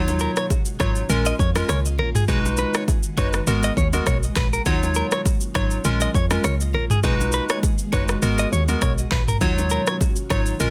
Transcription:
Already playing: log drum bass D#2, synth keys F#3 D#4 F4 C#5
0.08 low bongo, shaker
0.19 clean electric guitar A#4, shaker
0.36 clean electric guitar C#5, cross-stick, shaker
0.50 kick, high bongo, shaker
0.65 shaker
0.80 log drum bass G#1, synth keys F#3 D#4 F4 C#5, clean electric guitar C#5, kick, cross-stick, low bongo, shaker
0.95 shaker
1.09 log drum bass A#1, synth keys G#3 C#4 F4 A#4, low conga, shaker
1.25 clean electric guitar D#5, high bongo, shaker
1.39 log drum bass F2, clean electric guitar C#5, kick, shaker
1.55 synth keys G#3 C#4 F4 A#4, cross-stick, low bongo, shaker
1.69 log drum bass C#2, clean electric guitar C#5, cross-stick, high bongo, shaker
1.85 shaker
1.99 log drum bass A#1, clean electric guitar A#4, low conga
2.15 clean electric guitar G#4, mid tom, shaker
2.28 log drum bass B1, synth keys G#3 D#4 F#4 B4, ambient pad G#3 F#4, clean electric guitar G#4, kick, low conga, shaker
2.46 low bongo, shaker
2.57 clean electric guitar B4, low bongo, shaker
2.74 clean electric guitar C#5, cross-stick, shaker
2.88 kick, high bongo, shaker
3.03 shaker
3.17 log drum bass F#1, synth keys G#3 D#4 F#4 B4, clean electric guitar C#5, kick, low bongo, shaker
3.33 cross-stick, shaker
3.47 log drum bass G#1, synth keys G#3 B3 F#4 A#4, low conga, shaker
3.63 clean electric guitar D#5, high bongo, shaker
3.77 log drum bass D#2, clean electric guitar C#5, kick, shaker
3.93 synth keys G#3 B3 F#4 A#4, low bongo, shaker
4.07 log drum bass B1, clean electric guitar C#5, kick, cross-stick, high bongo, shaker
4.23 shaker
4.36 log drum bass A#1, clean electric guitar B4, kick, clap, high bongo, low conga, shaker
4.53 clean electric guitar A#4, shaker
4.66 log drum bass D#2, synth keys F#3 D#4 F4 C#5, ambient pad F4, clean electric guitar F#4, kick, low conga, shaker
4.83 low bongo, shaker
4.94 clean electric guitar A#4, shaker
5.11 clean electric guitar C#5, cross-stick, shaker
5.25 kick, high bongo, shaker
5.41 shaker
5.55 log drum bass G#1, synth keys F#3 D#4 F4 C#5, clean electric guitar C#5, kick, cross-stick, low bongo, shaker
5.71 shaker
5.85 log drum bass A#1, synth keys G#3 C#4 F4 A#4, ambient pad G#3, low conga, shaker
6.00 clean electric guitar D#5, high bongo, shaker
6.14 log drum bass F2, clean electric guitar C#5, kick, shaker
6.31 synth keys G#3 C#4 F4 A#4, cross-stick, low bongo, shaker
6.44 log drum bass C#2, clean electric guitar C#5, cross-stick, high bongo, shaker
6.61 shaker
6.74 log drum bass A#1, clean electric guitar A#4, low conga
6.90 clean electric guitar G#4, mid tom, shaker
7.03 log drum bass B1, synth keys G#3 D#4 F#4 B4, ambient pad F#4, clean electric guitar G#4, kick, low conga, shaker
7.21 low bongo, shaker
7.32 clean electric guitar B4, shaker
7.49 clean electric guitar C#5, cross-stick, shaker
7.63 kick, high bongo, shaker
7.78 shaker
7.93 log drum bass F#1, synth keys G#3 D#4 F#4 B4, clean electric guitar C#5, kick, low bongo, shaker
8.08 cross-stick, shaker
8.22 log drum bass G#1, synth keys G#3 B3 F#4 A#4, low conga, shaker
8.38 clean electric guitar D#5, high bongo, shaker
8.52 log drum bass D#2, clean electric guitar C#5, shaker
8.68 synth keys G#3 B3 F#4 A#4, low bongo, shaker
8.82 log drum bass B1, clean electric guitar C#5, kick, cross-stick, high bongo, shaker
8.98 shaker
9.11 log drum bass A#1, clean electric guitar B4, kick, clap, low conga
9.28 clean electric guitar A#4, mid tom, shaker
9.41 log drum bass D#2, synth keys F#3 D#4 F4 C#5, ambient pad F4, clean electric guitar F#4, kick, low conga, shaker
9.58 low bongo, shaker
9.70 clean electric guitar A#4, shaker
9.87 clean electric guitar C#5, cross-stick, shaker
10.01 kick, high bongo, shaker
10.16 shaker
10.30 log drum bass G#1, synth keys F#3 D#4 F4 C#5, clean electric guitar C#5, kick, cross-stick, low bongo, shaker
10.46 shaker
10.60 log drum bass A#1, synth keys G#3 C#4 F4 A#4, low conga, shaker

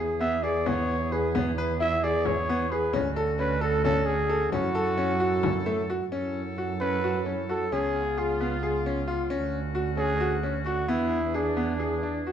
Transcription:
Already playing: double bass E2, woodwind section E3 B3 G#4, grand piano G#4
0.20 grand piano B3, trumpet E5
0.43 grand piano G#4, trumpet D5
0.66 grand piano B3, trumpet C#5, frame drum
1.12 grand piano G#4, trumpet B4
1.35 grand piano B3, frame drum
1.58 grand piano B4
1.80 grand piano E4, trumpet E5
2.04 grand piano G#4, trumpet D5
2.25 trumpet C#5, frame drum
2.49 grand piano B3
2.71 grand piano G#4, trumpet B4
2.93 double bass D2, woodwind section D3 C#4 F#4, grand piano C#4, frame drum
3.16 grand piano A4
3.39 grand piano C#4, trumpet B4
3.61 trumpet A4, grand piano A4
3.84 grand piano C#4, trumpet A4, frame drum
4.06 trumpet G#4
4.29 grand piano A4
4.52 double bass F#2, woodwind section F#3 E4 A4, grand piano C#4, trumpet F#4, frame drum
4.75 grand piano A4
4.98 grand piano C#4
5.20 grand piano F#4
5.43 frame drum
5.66 grand piano A3
5.90 grand piano F#4
6.12 double bass F#2, woodwind section F#3 E4 A4, grand piano C#4
6.58 grand piano F#4
6.80 grand piano C#4, trumpet B4
7.04 grand piano F#4
7.26 grand piano C#4
7.49 grand piano F#4, trumpet A4
7.70 double bass C#2, woodwind section C#3 B3 F4, grand piano C#4, trumpet G#4
8.17 trumpet F4, grand piano G#4
8.40 grand piano B3
8.63 grand piano G#4
8.86 grand piano C#4
9.08 grand piano F4
9.30 double bass D2, woodwind section D3 C#4 F#4, grand piano C#4
9.75 grand piano F#4
9.97 grand piano C#4, trumpet G#4
10.20 grand piano F#4
10.43 grand piano C#4
10.65 trumpet F#4, grand piano F#4
10.88 double bass E2, woodwind section E3 D4 G#4, grand piano B3, trumpet E4
11.34 trumpet D4, grand piano G#4
11.57 grand piano B3
11.79 grand piano G#4
12.03 grand piano D4
12.27 grand piano F#4

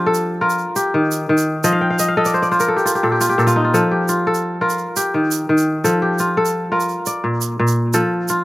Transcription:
Already playing: kora F3 D4 F4 G4
0.06 kora A4
0.14 shaker
0.41 kora F4 A#4
0.50 shaker
0.58 shaker
0.76 kora G4, shaker
0.94 kora D#3
1.11 shaker
1.29 kora D#3
1.38 shaker
1.64 kora F3 D#5, shaker
1.73 kora F5
1.81 kora G5
1.90 kora F5
1.99 kora D#5, shaker
2.08 kora F5
2.17 kora A4 D#5
2.25 kora D5, shaker
2.34 kora C5
2.42 kora D5, shaker
2.51 kora F4 C5, shaker
2.60 kora A#4, shaker
2.68 kora A4
2.76 kora G4, shaker
2.85 kora F4, shaker
2.95 kora G4, shaker
3.03 kora A#2 A4
3.12 kora G4
3.21 kora F4, shaker
3.29 kora G4
3.38 kora A#2 A4, shaker
3.47 kora F4, shaker
3.56 kora D#4
3.65 kora F4
3.74 kora F3 A4, shaker
3.91 kora G4
4.08 kora F4, shaker
4.27 kora A4
4.34 shaker
4.61 kora F4 A#4
4.70 shaker
4.78 shaker
4.96 kora G4, shaker
5.14 kora D#3
5.31 shaker
5.49 kora D#3
5.58 shaker
5.84 kora F3 A4, shaker
6.02 kora G4
6.19 kora F4, shaker
6.37 kora A4
6.45 shaker
6.72 kora F4 A#4
6.80 shaker
6.89 shaker
7.06 kora D5, shaker
7.24 kora A#2
7.41 shaker
7.59 kora A#2
7.67 shaker
7.93 kora F3 A4, shaker
8.28 kora F4, shaker

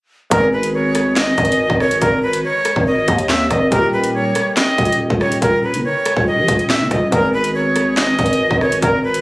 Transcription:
0.30 808-style bass G#1, felt piano G#3 B3 D#4 G#4, flute A#4, kick, closed hi-hat
0.53 flute B4
0.63 closed hi-hat
0.74 flute C#5
0.95 cross-stick, closed hi-hat
1.16 flute D#5, snare, clap, closed hi-hat
1.38 808-style bass G#1, kick, closed hi-hat
1.45 closed hi-hat
1.52 closed hi-hat
1.70 808-style bass G#1, kick
1.80 flute C#5, cross-stick
1.91 closed hi-hat
2.02 808-style bass G#1, flute A#4, kick, closed hi-hat
2.23 flute B4
2.33 closed hi-hat
2.44 flute C#5
2.65 cross-stick, closed hi-hat
2.76 808-style bass G#1, kick
2.87 flute D#5
3.08 808-style bass D#2, kick, closed hi-hat
3.19 closed hi-hat
3.29 flute E5, snare, clap
3.50 808-style bass G#1, flute D#5, kick, cross-stick, closed hi-hat
3.71 808-style bass D#1, felt piano G3 A#3 D#4 G4, flute A#4, kick, closed hi-hat
3.93 flute B4
4.04 closed hi-hat
4.14 flute C#5
4.35 cross-stick, closed hi-hat
4.57 flute D#5, snare, clap, closed hi-hat
4.78 808-style bass D#1, kick, closed hi-hat
4.85 closed hi-hat
4.92 closed hi-hat
5.10 808-style bass D#1, kick
5.21 flute C#5, cross-stick
5.32 closed hi-hat
5.42 808-style bass D#1, flute A#4, kick, closed hi-hat
5.63 flute B4
5.74 808-style bass G1, closed hi-hat
5.85 flute C#5
6.05 cross-stick, closed hi-hat
6.17 808-style bass D#1, kick
6.27 flute D#5
6.38 808-style bass A#1
6.48 808-style bass D#1, kick, closed hi-hat
6.59 closed hi-hat
6.70 flute E5, snare, clap
6.80 808-style bass G1
6.91 808-style bass D#1, flute D#5, kick, cross-stick, closed hi-hat
7.11 808-style bass G#1, felt piano G#3 B3 D#4 G#4, flute A#4, kick, closed hi-hat
7.34 flute B4
7.44 closed hi-hat
7.55 flute C#5
7.76 cross-stick, closed hi-hat
7.97 flute D#5, snare, clap, closed hi-hat
8.19 808-style bass G#1, kick, closed hi-hat
8.26 closed hi-hat
8.33 closed hi-hat
8.51 808-style bass G#1, kick
8.61 flute C#5, cross-stick
8.72 closed hi-hat
8.82 808-style bass G#1, flute A#4, kick, closed hi-hat
9.04 flute B4
9.14 closed hi-hat

